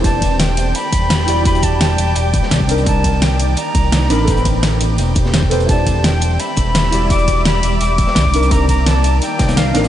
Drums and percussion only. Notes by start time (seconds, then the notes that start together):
0.04 kick, closed hi-hat, ride
0.22 kick, closed hi-hat, ride
0.40 snare, closed hi-hat, ride
0.57 closed hi-hat, ride
0.75 closed hi-hat, ride
0.93 kick, closed hi-hat, ride
1.10 snare, closed hi-hat, ride
1.19 snare
1.28 snare, closed hi-hat, open hi-hat, ride
1.45 kick, closed hi-hat, ride
1.55 closed hi-hat
1.63 kick, closed hi-hat, ride
1.81 snare, closed hi-hat, ride
1.98 closed hi-hat, ride
2.15 closed hi-hat, ride
2.34 kick, closed hi-hat, ride
2.43 snare
2.51 snare, closed hi-hat, ride
2.60 kick
2.69 closed hi-hat, open hi-hat, ride
2.78 closed hi-hat
2.86 kick, closed hi-hat, ride
3.04 kick, closed hi-hat, ride
3.22 snare, closed hi-hat, ride
3.40 closed hi-hat, ride
3.57 closed hi-hat, ride
3.75 kick, closed hi-hat, ride
3.92 snare, closed hi-hat, ride
4.01 snare
4.09 snare, closed hi-hat, open hi-hat, ride
4.27 kick, closed hi-hat, ride
4.37 closed hi-hat
4.45 kick, closed hi-hat, ride
4.63 snare, closed hi-hat, ride
4.81 closed hi-hat, ride
4.98 closed hi-hat, ride
5.15 kick, closed hi-hat, ride
5.26 snare
5.34 snare, closed hi-hat, ride
5.43 kick
5.51 closed hi-hat, open hi-hat, ride
5.60 closed hi-hat
5.69 kick, closed hi-hat, ride
5.87 kick, closed hi-hat, ride
6.04 snare, closed hi-hat, ride
6.21 closed hi-hat, ride
6.40 closed hi-hat, ride
6.57 kick, closed hi-hat, ride
6.75 snare, closed hi-hat, ride
6.84 snare
6.92 snare, closed hi-hat, open hi-hat, ride
7.10 kick, closed hi-hat, ride
7.19 closed hi-hat
7.28 kick, closed hi-hat, ride
7.45 snare, closed hi-hat, ride
7.63 closed hi-hat, ride
7.81 closed hi-hat, ride
7.98 kick, closed hi-hat, ride
8.07 snare
8.15 snare, closed hi-hat, ride
8.25 kick
8.34 closed hi-hat, open hi-hat, ride
8.43 closed hi-hat
8.51 kick, closed hi-hat, ride
8.69 kick, closed hi-hat, ride
8.87 snare, closed hi-hat, ride
9.04 closed hi-hat, ride
9.22 closed hi-hat, ride
9.39 kick, snare, closed hi-hat, ride
9.49 snare, closed hi-hat
9.57 snare, closed hi-hat, ride
9.66 snare
9.74 snare, closed hi-hat, open hi-hat, ride
9.84 snare, closed hi-hat